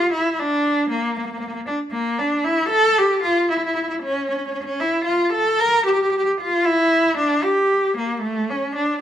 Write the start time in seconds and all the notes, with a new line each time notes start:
Already playing: F4
0.13 E4
0.32 E4
0.39 D4
0.90 A#3
1.18 A#3
1.25 A#3
1.32 A#3
1.39 A#3
1.47 A#3
1.54 A#3
1.67 D4
1.91 A#3
2.18 D4
2.44 E4
2.69 A4
2.98 G4
3.23 F4
3.50 E4
3.58 E4
3.66 E4
3.75 E4
3.83 E4
3.89 E4
4.03 C#4
4.29 C#4
4.37 C#4
4.47 C#4
4.53 C#4
4.61 C#4
4.66 C#4
4.80 E4
5.05 F4
5.33 A4
5.59 A#4
5.85 G4
5.94 G4
6.02 G4
6.11 G4
6.18 G4
6.25 G4
6.41 F4
6.65 E4
7.18 D4
7.43 G4
7.97 A#3
8.21 A3
8.50 C#4
8.75 D4